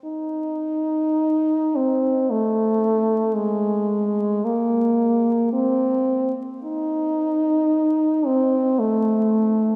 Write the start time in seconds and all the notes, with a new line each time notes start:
0.05 D#4
1.75 C4
2.30 A3
3.36 G#3
4.44 A#3
5.53 C4
6.63 D#4
8.26 C4
8.79 A3